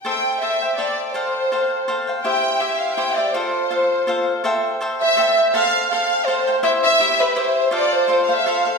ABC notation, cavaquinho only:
X:1
M:3/4
L:1/8
Q:"Swing" 1/4=164
K:C
V:1 name="Cavaquinho"
[Aceg]2 [Aceg] [ceg] [Aceg]2 | [Acfg]2 [Acfg]2 [Acfg] [cfg] | [EGce]2 [EGce]2 [EGce] [Gce] | [FAcf]2 [FAcf]2 [FAcf]2 |
[Aceg]2 [Aceg] [ceg] [Aceg] [ceg] | [Acfg]2 [Acfg]2 [Acfg] [cfg] | [EGce]2 [EGce] [Gce] [EGce]2 | [FAcf]2 [FAcf] [Acf] [FAcf] [Acf] |]